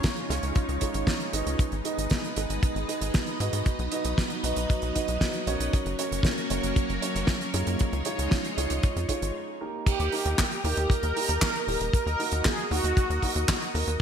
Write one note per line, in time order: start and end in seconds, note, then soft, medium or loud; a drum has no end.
0.00 1.57 G#3 medium
0.00 1.55 C#4 medium
0.00 3.62 D#4 medium
0.00 1.57 F4 medium
0.00 1.55 C#5 medium
0.00 kick loud
0.00 closed hi-hat medium
0.04 snare loud
0.16 closed hi-hat soft
0.30 0.39 C#2 medium
0.30 0.78 D#4 medium
0.30 0.78 F4 medium
0.30 0.78 G#4 medium
0.30 0.78 C#5 medium
0.30 snare soft
0.30 closed hi-hat medium
0.43 0.52 C#2 medium
0.43 closed hi-hat medium
0.55 kick loud
0.55 closed hi-hat medium
0.69 0.78 C#2 medium
0.69 closed hi-hat soft
0.81 1.30 D#4 medium
0.81 1.30 F4 medium
0.81 1.30 G#4 medium
0.81 1.30 C#5 medium
0.81 kick medium
0.81 closed hi-hat medium
0.94 1.04 G#1 medium
0.94 closed hi-hat medium
1.07 kick loud
1.07 snare loud
1.07 closed hi-hat medium
1.20 closed hi-hat soft
1.33 1.43 G#1 medium
1.33 1.82 D#4 medium
1.33 1.82 G#4 medium
1.33 1.82 B4 medium
1.33 1.82 D#5 loud
1.33 closed hi-hat loud
1.46 1.56 C#2 medium
1.46 closed hi-hat medium
1.59 3.64 G#3 medium
1.59 5.69 B3 medium
1.59 5.69 B4 medium
1.59 5.69 D#5 medium
1.59 kick loud
1.59 closed hi-hat medium
1.72 1.82 G#1 medium
1.72 closed hi-hat soft
1.85 2.13 D#4 medium
1.85 2.13 G#4 medium
1.85 2.13 B4 medium
1.85 2.13 D#5 loud
1.85 closed hi-hat medium
1.98 2.08 G#1 medium
1.98 closed hi-hat medium
2.10 kick loud
2.10 snare loud
2.10 closed hi-hat medium
2.24 closed hi-hat soft
2.36 2.46 G#1 medium
2.36 2.85 D#4 medium
2.36 2.85 G#4 medium
2.36 2.85 B4 medium
2.36 2.85 D#5 medium
2.36 closed hi-hat medium
2.50 2.59 G#1 medium
2.50 closed hi-hat medium
2.63 kick loud
2.63 closed hi-hat medium
2.75 2.85 G#1 medium
2.75 closed hi-hat soft
2.88 3.37 D#4 medium
2.88 3.37 G#4 medium
2.88 3.37 B4 medium
2.88 3.37 D#5 medium
2.88 closed hi-hat medium
3.01 3.11 G#1 medium
3.01 closed hi-hat medium
3.14 kick loud
3.14 snare loud
3.14 closed hi-hat medium
3.27 closed hi-hat soft
3.40 3.50 G#2 medium
3.40 3.89 D#4 medium
3.40 3.89 F#4 medium
3.40 3.89 B4 medium
3.40 3.89 D#5 loud
3.40 closed hi-hat medium
3.53 3.63 G#2 medium
3.53 closed hi-hat medium
3.66 5.71 F#3 medium
3.66 5.71 D#4 medium
3.66 kick loud
3.66 closed hi-hat medium
3.79 3.89 B1 medium
3.79 closed hi-hat soft
3.92 4.20 D#4 medium
3.92 4.20 F#4 medium
3.92 4.20 B4 medium
3.92 4.20 D#5 loud
3.92 closed hi-hat medium
4.05 4.14 B1 medium
4.05 closed hi-hat medium
4.18 kick loud
4.18 snare loud
4.18 closed hi-hat medium
4.30 closed hi-hat soft
4.44 4.53 B1 medium
4.44 4.92 D#4 medium
4.44 4.92 F#4 medium
4.44 4.92 B4 medium
4.44 4.92 D#5 loud
4.44 closed hi-hat loud
4.56 4.66 B1 medium
4.56 closed hi-hat medium
4.70 kick loud
4.70 closed hi-hat medium
4.82 4.92 B1 medium
4.82 closed hi-hat soft
4.95 5.44 D#4 medium
4.95 5.44 F#4 medium
4.95 5.44 B4 medium
4.95 5.44 D#5 medium
4.95 kick medium
4.95 closed hi-hat medium
5.08 5.18 B1 medium
5.08 closed hi-hat medium
5.21 kick loud
5.21 snare loud
5.21 closed hi-hat medium
5.33 closed hi-hat soft
5.47 5.57 B1 medium
5.47 5.96 C#4 medium
5.47 5.96 F#4 medium
5.47 5.96 A#4 medium
5.47 5.96 C#5 loud
5.47 closed hi-hat medium
5.60 5.70 B1 medium
5.60 closed hi-hat medium
5.73 7.78 F#3 medium
5.73 7.78 A#3 medium
5.73 9.31 C#4 medium
5.73 7.78 A#4 medium
5.73 7.78 C#5 medium
5.73 kick loud
5.73 closed hi-hat medium
5.86 5.95 F#1 medium
5.86 closed hi-hat soft
5.99 6.27 C#4 medium
5.99 6.27 F#4 medium
5.99 6.27 A#4 medium
5.99 6.27 C#5 loud
5.99 closed hi-hat loud
6.12 6.21 F#1 medium
6.12 closed hi-hat medium
6.23 kick loud
6.23 snare loud
6.23 closed hi-hat medium
6.38 closed hi-hat soft
6.50 6.60 F#1 medium
6.50 6.99 C#4 medium
6.50 6.99 F#4 medium
6.50 6.99 A#4 medium
6.50 6.99 C#5 loud
6.50 closed hi-hat loud
6.63 6.73 F#1 medium
6.63 closed hi-hat medium
6.76 kick loud
6.76 closed hi-hat medium
6.89 6.99 F#1 medium
6.89 closed hi-hat soft
7.02 7.51 C#4 medium
7.02 7.51 F#4 medium
7.02 7.51 A#4 medium
7.02 7.51 C#5 medium
7.02 closed hi-hat loud
7.15 7.25 F#1 medium
7.15 closed hi-hat medium
7.27 kick loud
7.27 snare loud
7.27 closed hi-hat medium
7.41 closed hi-hat soft
7.54 7.64 F#2 medium
7.54 8.02 D#4 medium
7.54 8.02 F4 medium
7.54 8.03 G#4 medium
7.54 8.02 C#5 loud
7.54 closed hi-hat loud
7.67 7.77 F#2 medium
7.67 closed hi-hat medium
7.79 9.33 G#3 medium
7.79 9.33 D#4 medium
7.79 9.33 F4 medium
7.79 9.33 C#5 medium
7.79 kick loud
7.79 closed hi-hat medium
7.93 8.02 C#2 medium
7.93 closed hi-hat soft
8.05 8.34 D#4 medium
8.05 8.34 F4 medium
8.05 8.34 G#4 medium
8.05 8.34 C#5 loud
8.05 closed hi-hat medium
8.19 8.28 C#2 medium
8.19 closed hi-hat medium
8.31 kick loud
8.31 snare loud
8.31 closed hi-hat medium
8.44 closed hi-hat soft
8.57 8.67 C#2 medium
8.57 9.06 D#4 medium
8.57 9.06 F4 medium
8.57 9.06 G#4 medium
8.57 9.06 C#5 loud
8.57 closed hi-hat loud
8.70 8.80 C#2 medium
8.70 closed hi-hat medium
8.83 kick loud
8.83 closed hi-hat medium
8.96 9.06 F2 medium
8.96 closed hi-hat soft
9.09 9.58 D#4 medium
9.09 9.58 F4 medium
9.09 9.58 G#4 medium
9.09 9.58 C#5 medium
9.09 kick medium
9.09 closed hi-hat medium
9.22 9.32 G#1 medium
9.22 closed hi-hat medium
9.61 10.09 A#3 medium
9.61 10.09 D#4 medium
9.61 10.09 G4 medium
9.61 10.09 A#4 loud
9.86 11.92 G4 medium
9.86 10.63 G4 loud
9.86 13.96 A#4 medium
9.86 14.02 D#5 medium
9.86 13.96 A#5 medium
9.86 kick loud
9.86 closed hi-hat medium
9.86 crash medium
10.00 10.09 D#2 medium
10.00 closed hi-hat soft
10.12 10.41 A#3 medium
10.12 10.41 D#4 medium
10.12 10.41 G4 medium
10.12 10.41 A#4 loud
10.12 open hi-hat medium
10.25 10.35 D#2 medium
10.25 closed hi-hat medium
10.38 kick loud
10.38 snare loud
10.38 clap loud
10.38 closed hi-hat medium
10.52 closed hi-hat soft
10.64 10.74 D#2 loud
10.64 11.13 A#3 medium
10.64 11.13 D#4 medium
10.64 11.13 G4 medium
10.64 10.91 G4 loud
10.64 11.13 A#4 loud
10.64 open hi-hat loud
10.77 10.87 D#2 medium
10.77 closed hi-hat medium
10.90 11.92 A#4 loud
10.90 kick loud
10.90 closed hi-hat medium
11.03 11.13 D#2 medium
11.03 closed hi-hat soft
11.16 11.65 A#3 medium
11.16 11.65 D#4 medium
11.16 11.65 G4 medium
11.16 11.65 A#4 medium
11.16 open hi-hat loud
11.29 11.39 D#2 medium
11.29 closed hi-hat medium
11.42 kick loud
11.42 snare loud
11.42 clap loud
11.42 closed hi-hat medium
11.56 closed hi-hat soft
11.67 11.77 D#1 loud
11.67 11.85 A#3 medium
11.67 11.85 D#4 medium
11.67 11.85 G4 medium
11.67 11.85 A#4 medium
11.67 open hi-hat loud
11.80 11.90 D#1 medium
11.80 closed hi-hat medium
11.93 13.98 F#4 medium
11.93 12.47 A#4 loud
11.93 kick loud
11.93 closed hi-hat medium
12.06 12.16 D#2 medium
12.06 closed hi-hat soft
12.19 12.47 A#3 loud
12.19 12.47 D#4 medium
12.19 12.47 F#4 medium
12.19 12.47 A#4 loud
12.19 open hi-hat loud
12.32 12.42 D#2 medium
12.32 closed hi-hat medium
12.45 12.72 G#4 loud
12.45 kick loud
12.45 snare loud
12.45 clap loud
12.45 closed hi-hat medium
12.58 closed hi-hat soft
12.71 12.81 D#2 medium
12.71 13.20 A#3 medium
12.71 13.20 D#4 medium
12.71 13.20 F#4 medium
12.71 13.71 F#4 medium
12.71 13.20 A#4 loud
12.71 open hi-hat loud
12.84 12.94 D#2 medium
12.84 closed hi-hat medium
12.97 kick loud
12.97 closed hi-hat medium
13.10 13.20 D#2 medium
13.10 closed hi-hat soft
13.22 13.71 A#3 medium
13.22 13.71 D#4 medium
13.22 13.71 F#4 medium
13.22 13.71 A#4 medium
13.22 kick medium
13.22 open hi-hat loud
13.36 13.45 D#2 medium
13.36 closed hi-hat medium
13.48 kick loud
13.48 snare loud
13.48 clap loud
13.48 closed hi-hat medium
13.62 closed hi-hat soft
13.74 13.84 D#2 medium
13.74 13.92 A#3 medium
13.74 13.92 D#4 medium
13.74 13.92 F#4 medium
13.74 13.92 A#4 medium
13.74 open hi-hat loud
13.87 13.97 D#2 medium
13.87 closed hi-hat medium